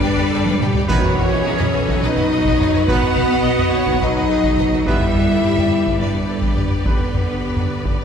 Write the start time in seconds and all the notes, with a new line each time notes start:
Already playing: G3 B3 D4 G4 B4 D5 G5
0.03 G1 B4 G5
0.17 G1 G4 D5, taiko low-mid
0.32 G1 A4 B4 G5
0.46 G1 D4 B4, taiko high
0.60 G1 G4 B4 G5, taiko mid
0.74 G1 G4 D5, taiko low
0.87 B1 B2 D#3 E3 B3 C#4 D#4 F#4 B4 C#5 D#5, taiko
1.03 taiko low-mid
1.17 B1 F#4 B4, taiko low-mid
1.31 B1 B4 D#5
1.44 B1 D#4 F#4 G#4
1.59 B1 B4 D#5, taiko low-mid
1.73 B1 F#4 A4 B4
1.87 B1 D#4 F#4, taiko
2.01 B1 F#3 D#4 B4 D#5
2.17 B1 F#4 B4, taiko low-mid
2.29 B1 B4 D#5
2.45 B1 D#4 F#4, taiko
2.58 B1 B4 C#5, taiko low-mid
2.62 D#5
2.74 B1 F#4 B4, taiko low-mid
2.86 B1 D#3 B3 D#4 F#4 B4 F#5, taiko
3.03 taiko low-mid
3.16 B1 F#4 B4, taiko low-mid
3.30 B1 B4 D#5
3.42 B1 D#4 F#4 D#5
3.59 B1 B4 D#5, taiko low-mid
3.72 B1 F#4 B4 C#5
3.87 B1 D#4 F#4, taiko
3.99 B1 F#3 D#4 B4 D#5
4.15 B1 F#4 B4, taiko low-mid
4.28 B1 G#4 B4 D#5
4.43 B1 D#4 F#4, taiko
4.57 B1 F#4 B4 D#5, taiko low-mid
4.72 B1 F#4 B4, taiko low-mid
4.85 G1 D3 G3 B3 D4 E4 G4 B4 D5 E5, taiko
5.00 taiko low-mid
5.14 G1 G4 A4 B4, taiko low-mid
5.29 G1 B4 D5
5.43 G1 D4 G4
5.57 G1 B4 D5, taiko low-mid
5.71 G1 G4 B4
5.86 G1 D4 G4, taiko
5.99 G1 G3 D4 B4 D5
6.13 G1 G4 B4, taiko low-mid
6.28 G1 A4 B4 D5
6.42 G1 D4 G4, taiko
6.56 G1 G4 B4 D5, taiko low-mid
6.71 G1 G4 B4, taiko low-mid
6.84 G1 D3 B3 D4 G4 B4, taiko
7.00 taiko low-mid
7.14 G1 G4 B4, taiko low-mid
7.28 G1 B4 D5
7.43 G1 D4 G4
7.57 G1 B4 D5, taiko low-mid
7.71 G1 G4 B4
7.85 G1 D4 G4, taiko
8.00 G1 B4 D5